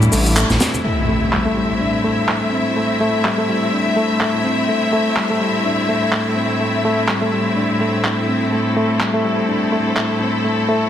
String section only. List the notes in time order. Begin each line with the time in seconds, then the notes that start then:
Already playing: E3 G3 E4
0.84 A2 A3 C4 E4 E5
8.52 A4